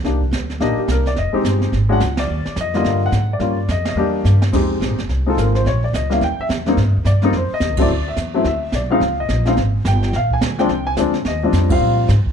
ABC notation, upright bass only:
X:1
M:4/4
L:1/8
Q:"Swing" 1/4=214
K:Eb
V:1 name="Upright bass" clef=bass
C,,2 D,,2 B,,, z C,,2 | F,,, z G,,,2 ^G,,,2 ^C,,2 | E,, z F,,2 G,,2 A,,2 | G,,2 F,,2 =E,,2 G,,2 |
F,,2 (3B,,, A,,, F,,, C,,2 A,,,2 | B,,,2 _D,,2 E,, z _F,,2 | (3A,, G,, E,, G,,2 F,, z (3E,, C,, A,,, | D,,2 =E,,2 D,,2 _C,,2 |
_D,,2 B,,,2 A,,,2 G,,,2 | B,,,2 D,,2 C,,2 D,,2 | E,,2 F,,2 B,,2 A,, z |]